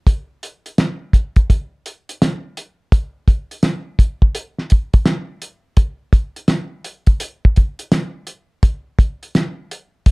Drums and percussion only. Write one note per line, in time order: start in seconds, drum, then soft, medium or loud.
0.07 kick loud
0.07 closed hi-hat medium
0.43 closed hi-hat medium
0.66 closed hi-hat medium
0.78 snare loud
0.78 closed hi-hat medium
1.13 kick medium
1.13 closed hi-hat medium
1.36 kick medium
1.36 closed hi-hat medium
1.50 kick medium
1.50 closed hi-hat loud
1.86 closed hi-hat medium
2.09 closed hi-hat medium
2.22 snare loud
2.22 closed hi-hat medium
2.57 closed hi-hat medium
2.92 kick loud
2.92 closed hi-hat loud
3.28 kick loud
3.28 closed hi-hat medium
3.51 closed hi-hat medium
3.63 snare loud
3.63 closed hi-hat medium
3.99 kick medium
3.99 closed hi-hat medium
4.22 kick medium
4.35 closed hi-hat loud
4.58 snare soft
4.70 kick medium
4.70 closed hi-hat medium
4.94 kick loud
4.94 closed hi-hat medium
5.06 snare loud
5.06 closed hi-hat medium
5.42 closed hi-hat medium
5.77 kick loud
5.77 closed hi-hat medium
6.13 kick loud
6.13 closed hi-hat medium
6.36 closed hi-hat soft
6.48 snare loud
6.48 closed hi-hat medium
6.84 closed hi-hat medium
7.07 kick medium
7.07 closed hi-hat medium
7.20 closed hi-hat loud
7.45 kick medium
7.56 kick medium
7.56 closed hi-hat medium
7.79 closed hi-hat medium
7.92 snare loud
7.92 closed hi-hat medium
8.27 closed hi-hat medium
8.63 kick loud
8.63 closed hi-hat medium
8.99 kick loud
8.99 closed hi-hat medium
9.23 closed hi-hat soft
9.35 snare loud
9.35 closed hi-hat medium
9.71 closed hi-hat medium
10.06 kick loud
10.06 closed hi-hat loud